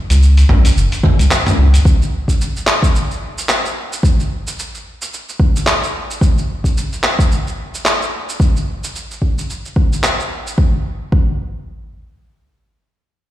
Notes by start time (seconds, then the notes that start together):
0.10 C#2, open hi-hat, shaker
0.23 shaker
0.37 open hi-hat, shaker
0.49 A#1, mid tom
0.65 open hi-hat, shaker
0.76 F#1, shaker
0.92 open hi-hat, shaker
1.03 kick, mid tom
1.19 C#2, open hi-hat, shaker
1.31 clap, shaker
1.47 mid tom, open hi-hat, shaker
1.58 C#2
1.74 open hi-hat, shaker
1.85 kick, shaker
2.02 shaker
2.28 kick, shaker
2.41 shaker
2.56 shaker
2.67 clap
2.83 kick, shaker
2.95 shaker
3.11 shaker
3.38 shaker
3.49 clap, shaker
3.65 shaker
3.92 shaker
4.03 kick, shaker
4.20 shaker
4.47 shaker
4.59 shaker
4.75 shaker
5.02 shaker
5.13 shaker
5.29 shaker
5.40 kick
5.56 shaker
5.67 clap, shaker
5.83 shaker
6.11 shaker
6.21 kick, shaker
6.38 shaker
6.64 kick, shaker
6.77 shaker
6.93 shaker
7.04 clap
7.19 kick, shaker
7.32 shaker
7.47 shaker
7.74 shaker
7.86 clap, shaker
8.02 shaker
8.29 shaker
8.40 kick, shaker
8.56 shaker
8.84 shaker
8.95 shaker
9.11 shaker
9.22 kick
9.38 shaker
9.50 shaker
9.65 shaker
9.76 kick
9.93 shaker
10.04 clap, shaker
10.20 shaker
10.47 shaker
10.58 kick
11.12 kick